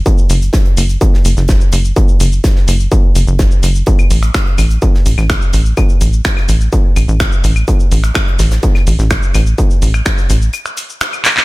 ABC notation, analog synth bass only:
X:1
M:4/4
L:1/16
Q:1/4=126
K:A
V:1 name="Analog synth bass" clef=bass
z2 F,,,2 z2 F,,,2 z2 F,,, F,,,2 z F,,,2 | z2 F,,,2 z2 F,,,2 z2 F,,, F,,,2 z F,,,2 | z2 A,,,2 z2 A,,,2 z2 A,,, A,,,2 z A,,,2 | z2 A,,,2 z2 A,,,2 z2 A,,, A,,,2 z A,,,2 |
z2 A,,,2 z2 A,,,2 z2 A,,, A,,,2 z A,,,2 | z2 A,,,2 z2 A,,,2 z8 |]